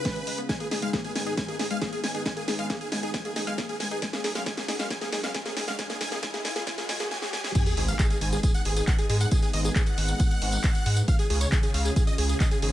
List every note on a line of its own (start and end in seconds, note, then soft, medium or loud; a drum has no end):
0.00 0.46 C#2 medium
0.00 0.46 C#3 medium
0.00 0.46 F4 medium
0.00 3.98 G#4 medium
0.00 0.40 B4 loud
0.05 0.12 G#3 medium
0.05 kick loud
0.05 snare medium
0.05 closed hi-hat medium
0.16 0.23 G#3 medium
0.16 closed hi-hat medium
0.27 0.31 G#3 medium
0.27 open hi-hat loud
0.38 0.45 B3 medium
0.38 closed hi-hat soft
0.49 3.99 G#2 medium
0.49 3.99 D#3 medium
0.49 0.56 G#3 medium
0.49 3.99 B3 medium
0.49 0.56 G#5 medium
0.49 kick loud
0.49 snare medium
0.49 closed hi-hat medium
0.49 riser medium
0.60 0.67 A#3 medium
0.60 0.67 G#4 medium
0.60 closed hi-hat soft
0.71 0.75 D#4 medium
0.71 0.78 G#4 medium
0.71 snare medium
0.71 open hi-hat loud
0.82 0.89 G#3 medium
0.82 0.89 F5 medium
0.82 closed hi-hat medium
0.93 0.97 A#3 loud
0.93 1.00 G#4 medium
0.93 kick loud
0.93 snare medium
0.93 closed hi-hat medium
1.04 1.11 G#4 medium
1.04 1.12 G#4 medium
1.04 closed hi-hat soft
1.16 1.22 G#3 medium
1.16 1.23 G#5 medium
1.16 snare medium
1.16 open hi-hat loud
1.26 1.36 D#4 medium
1.26 1.33 G#4 medium
1.26 closed hi-hat medium
1.37 1.44 G#3 medium
1.37 1.45 G#5 loud
1.37 kick loud
1.37 snare medium
1.37 closed hi-hat medium
1.48 1.55 A#3 medium
1.48 1.56 G#4 medium
1.48 closed hi-hat medium
1.59 1.64 D#4 medium
1.59 1.67 G#4 medium
1.59 snare medium
1.59 open hi-hat loud
1.71 1.77 G#3 medium
1.71 1.78 F5 medium
1.71 closed hi-hat medium
1.82 1.86 A#3 loud
1.82 1.89 G#4 medium
1.82 kick loud
1.82 snare medium
1.82 closed hi-hat medium
1.93 2.00 G#4 medium
1.93 1.99 G#4 medium
1.93 closed hi-hat medium
2.04 2.10 G#3 medium
2.04 2.11 G#5 medium
2.04 snare medium
2.04 open hi-hat loud
2.14 2.24 D#4 medium
2.14 2.22 G#4 medium
2.14 closed hi-hat soft
2.25 2.33 G#3 medium
2.25 2.33 G#5 medium
2.25 kick loud
2.25 snare medium
2.25 closed hi-hat medium
2.37 2.44 A#3 medium
2.37 2.44 G#4 medium
2.37 closed hi-hat soft
2.48 2.52 D#4 medium
2.48 2.55 G#4 medium
2.48 snare medium
2.48 open hi-hat loud
2.59 2.66 G#3 loud
2.59 2.66 F5 medium
2.59 closed hi-hat medium
2.70 2.74 A#3 loud
2.70 2.77 G#4 medium
2.70 kick loud
2.70 snare medium
2.70 closed hi-hat medium
2.81 2.88 G#4 medium
2.81 closed hi-hat medium
2.92 2.99 G#3 medium
2.92 2.99 G#5 medium
2.92 snare medium
2.92 open hi-hat loud
3.03 3.12 D#4 medium
3.03 3.10 G#4 medium
3.03 closed hi-hat medium
3.14 3.21 G#3 medium
3.14 3.21 G#5 loud
3.14 kick loud
3.14 snare medium
3.14 closed hi-hat medium
3.25 3.32 A#3 medium
3.25 3.32 G#4 medium
3.25 closed hi-hat medium
3.36 3.40 D#4 medium
3.36 3.43 G#4 medium
3.36 snare medium
3.36 open hi-hat loud
3.47 3.54 G#3 loud
3.47 3.54 F5 medium
3.47 closed hi-hat medium
3.58 3.62 A#3 loud
3.58 3.65 G#4 medium
3.58 kick loud
3.58 snare medium
3.58 closed hi-hat medium
3.69 3.76 G#4 medium
3.69 closed hi-hat medium
3.80 3.87 G#3 medium
3.80 3.87 G#5 medium
3.80 snare medium
3.80 open hi-hat loud
3.91 4.00 D#4 medium
3.91 3.98 G#4 medium
3.91 closed hi-hat medium
4.02 7.08 F#2 medium
4.02 7.08 C#3 medium
4.02 4.09 G#3 medium
4.02 7.08 A#3 medium
4.02 5.77 F#4 medium
4.02 4.09 G#5 medium
4.02 kick loud
4.02 snare medium
4.02 closed hi-hat medium
4.13 4.20 A#3 medium
4.13 4.20 G#4 medium
4.13 snare medium
4.13 closed hi-hat medium
4.24 4.28 D#4 medium
4.24 4.31 G#4 medium
4.24 snare medium
4.24 open hi-hat loud
4.35 4.42 G#3 loud
4.35 4.42 F5 medium
4.35 snare medium
4.35 closed hi-hat medium
4.46 4.53 G#5 loud
4.46 kick loud
4.46 snare loud
4.46 closed hi-hat medium
4.57 4.64 A#3 medium
4.57 4.64 G#4 medium
4.57 snare medium
4.57 closed hi-hat medium
4.68 4.72 D#4 medium
4.68 4.76 G#4 medium
4.68 snare loud
4.68 open hi-hat loud
4.79 4.86 G#3 loud
4.79 4.87 F5 loud
4.79 snare medium
4.79 closed hi-hat medium
4.90 4.98 G#5 loud
4.90 kick loud
4.90 snare loud
4.90 closed hi-hat medium
5.01 5.08 A#3 medium
5.01 5.09 G#4 medium
5.01 snare medium
5.01 closed hi-hat medium
5.12 5.17 D#4 medium
5.12 5.20 G#4 medium
5.12 snare loud
5.12 open hi-hat loud
5.24 5.30 G#3 loud
5.24 5.31 F5 medium
5.24 snare medium
5.24 closed hi-hat medium
5.34 5.41 G#3 medium
5.34 5.42 G#5 medium
5.34 kick loud
5.34 snare loud
5.34 closed hi-hat medium
5.46 5.52 A#3 medium
5.46 5.53 G#4 medium
5.46 snare medium
5.46 closed hi-hat medium
5.57 5.61 D#4 medium
5.57 5.64 G#4 medium
5.57 snare loud
5.57 open hi-hat loud
5.68 5.74 G#3 loud
5.68 5.75 F5 loud
5.68 snare medium
5.68 closed hi-hat medium
5.79 5.85 G#3 medium
5.79 7.10 F4 medium
5.79 5.86 G#5 loud
5.79 kick loud
5.79 snare loud
5.79 closed hi-hat medium
5.90 5.96 A#3 medium
5.90 5.97 G#4 medium
5.90 snare medium
5.90 closed hi-hat medium
6.01 6.08 G#3 medium
6.01 6.08 G#5 loud
6.01 kick medium
6.01 snare loud
6.01 open hi-hat loud
6.12 6.19 A#3 medium
6.12 6.19 G#4 medium
6.12 snare medium
6.12 closed hi-hat medium
6.23 6.30 G#3 medium
6.23 6.30 G#5 loud
6.23 kick loud
6.23 snare loud
6.23 closed hi-hat medium
6.34 6.41 A#3 medium
6.34 6.41 G#4 medium
6.34 snare medium
6.34 closed hi-hat medium
6.45 6.52 G#3 medium
6.45 6.52 G#5 loud
6.45 snare loud
6.45 open hi-hat loud
6.56 6.63 A#3 medium
6.56 6.63 G#4 medium
6.56 snare loud
6.56 closed hi-hat medium
6.67 6.74 G#3 medium
6.67 6.74 G#5 loud
6.67 kick loud
6.67 snare loud
6.67 closed hi-hat medium
6.78 6.85 A#3 medium
6.78 6.85 G#4 medium
6.78 snare medium
6.78 closed hi-hat medium
6.89 6.96 G#3 medium
6.89 6.96 G#5 loud
6.89 snare loud
6.89 open hi-hat loud
7.00 7.07 A#3 medium
7.00 7.07 G#4 medium
7.00 snare loud
7.00 closed hi-hat medium
7.11 7.18 G#5 loud
7.11 snare medium
7.22 7.29 G#4 medium
7.22 snare medium
7.33 7.40 G#5 loud
7.33 snare medium
7.44 7.51 G#4 medium
7.44 snare medium
7.55 11.05 G#3 medium
7.55 11.05 B3 medium
7.55 11.05 D#4 medium
7.55 7.62 G#5 loud
7.55 kick loud
7.55 closed hi-hat medium
7.55 crash loud
7.55 tambourine medium
7.55 sub drop medium
7.66 7.73 G#4 medium
7.66 closed hi-hat medium
7.66 tambourine soft
7.77 7.93 G#1 loud
7.77 7.84 G#4 medium
7.77 open hi-hat loud
7.88 7.95 F5 medium
7.88 closed hi-hat medium
7.88 tambourine medium
7.99 8.06 G#4 medium
7.99 kick loud
7.99 clap loud
7.99 closed hi-hat medium
7.99 tambourine medium
8.10 8.17 G#4 medium
8.10 closed hi-hat medium
8.10 tambourine soft
8.21 8.37 G#1 medium
8.21 8.28 G#5 medium
8.21 open hi-hat loud
8.32 8.40 G#4 medium
8.32 closed hi-hat medium
8.32 tambourine medium
8.43 8.50 G#4 medium
8.43 kick loud
8.43 closed hi-hat medium
8.43 tambourine medium
8.54 8.62 F#5 medium
8.54 closed hi-hat medium
8.54 tambourine soft
8.65 8.82 G#1 medium
8.65 8.73 G#4 medium
8.65 open hi-hat loud
8.76 8.84 G#4 medium
8.76 closed hi-hat medium
8.76 tambourine medium
8.87 8.95 F#5 medium
8.87 kick loud
8.87 clap loud
8.87 closed hi-hat medium
8.87 tambourine medium
8.98 9.06 G#4 medium
8.98 closed hi-hat medium
8.98 tambourine soft
9.10 9.26 G#2 loud
9.10 9.17 G#4 medium
9.10 open hi-hat loud
9.20 9.28 F#5 medium
9.20 closed hi-hat medium
9.20 tambourine medium
9.31 9.39 G#4 medium
9.31 kick loud
9.31 closed hi-hat medium
9.31 tambourine medium
9.42 9.50 G#4 medium
9.42 closed hi-hat medium
9.42 tambourine soft
9.53 9.70 G#1 loud
9.53 9.61 D#5 medium
9.53 open hi-hat loud
9.65 9.72 G#4 medium
9.65 closed hi-hat medium
9.65 tambourine medium
9.76 9.83 G#4 medium
9.76 kick loud
9.76 clap loud
9.76 closed hi-hat medium
9.76 tambourine medium
9.86 10.99 F#5 loud
9.86 closed hi-hat medium
9.86 tambourine soft
9.98 10.14 G#1 medium
9.98 open hi-hat loud
10.08 closed hi-hat medium
10.08 tambourine medium
10.20 kick loud
10.20 closed hi-hat medium
10.20 tambourine medium
10.31 closed hi-hat medium
10.31 tambourine soft
10.42 10.58 G#1 medium
10.42 open hi-hat loud
10.52 closed hi-hat medium
10.52 tambourine medium
10.64 kick loud
10.64 clap loud
10.64 closed hi-hat medium
10.64 tambourine medium
10.75 closed hi-hat medium
10.75 tambourine soft
10.86 11.02 G#2 loud
10.86 open hi-hat loud
10.97 closed hi-hat medium
10.97 tambourine medium
11.08 12.72 C#3 medium
11.08 12.72 C#4 medium
11.08 12.72 F4 medium
11.08 12.72 G#4 medium
11.08 11.15 F5 loud
11.08 kick loud
11.08 closed hi-hat medium
11.08 tambourine medium
11.19 11.26 G#4 medium
11.19 closed hi-hat medium
11.19 tambourine soft
11.30 11.46 C#2 loud
11.30 11.37 G#4 medium
11.30 open hi-hat loud
11.41 11.48 C#5 medium
11.41 closed hi-hat medium
11.41 tambourine medium
11.52 11.59 G#4 medium
11.52 kick loud
11.52 clap loud
11.52 closed hi-hat medium
11.52 tambourine medium
11.63 11.70 G#4 medium
11.63 closed hi-hat medium
11.63 tambourine soft
11.74 11.90 C#2 medium
11.74 11.81 F5 loud
11.74 open hi-hat loud
11.85 11.92 G#4 medium
11.85 closed hi-hat medium
11.85 tambourine medium
11.96 12.03 G#4 medium
11.96 kick loud
11.96 closed hi-hat medium
11.96 tambourine medium
12.07 12.14 D#5 loud
12.07 closed hi-hat medium
12.07 tambourine soft
12.18 12.35 C#2 medium
12.18 12.25 G#4 medium
12.18 open hi-hat loud
12.29 12.36 G#4 medium
12.29 closed hi-hat medium
12.29 tambourine medium
12.40 12.47 D#5 medium
12.40 kick loud
12.40 clap loud
12.40 closed hi-hat medium
12.40 tambourine medium
12.51 12.58 G#4 medium
12.51 closed hi-hat medium
12.51 tambourine soft
12.62 12.72 G#1 loud
12.62 12.70 G#4 medium
12.62 open hi-hat loud